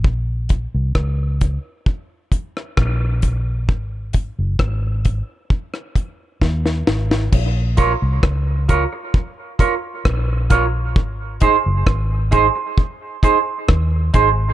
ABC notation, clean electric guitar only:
X:1
M:4/4
L:1/8
Q:1/4=66
K:Bbm
V:1 name="Clean electric guitar"
z8 | z8 | z [FBd] z [FBd] z [FBd] z [FBd] | z [EAc] z [EAc] z [EAc] z [EAc] |]